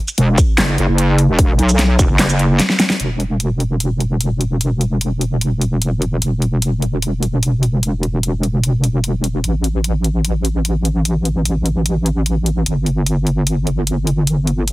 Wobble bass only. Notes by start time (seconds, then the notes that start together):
0.18 E1
0.58 F#1
0.78 F#1
0.88 F#1
1.29 E1
1.59 B1
1.99 E1
2.09 F#1
3.00 E1
6.22 E1
9.44 A1
12.66 G1